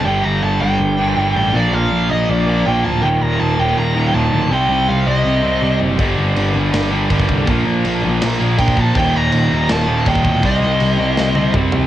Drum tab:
CC |----------------|----------------|----------------|----------------|
SD |----------------|----------------|----------------|----------------|
T1 |----------------|----------------|----------------|----------------|
T2 |----------------|----------------|----------------|----------------|
FT |----------------|----------------|----------------|----------------|
BD |----------------|----------------|----------------|----------------|

CC |x---x---x---x---|x---x---x---x---|x---x---x---x---|x---x-----------|
SD |--------o-------|--------o-------|--------o-------|--------o-------|
T1 |----------------|----------------|----------------|----------o-----|
T2 |----------------|----------------|----------------|------------o---|
FT |----------------|----------------|----------------|--------------o-|
BD |o-----------ooo-|o-----------ooo-|o-----------ooo-|o-----------o---|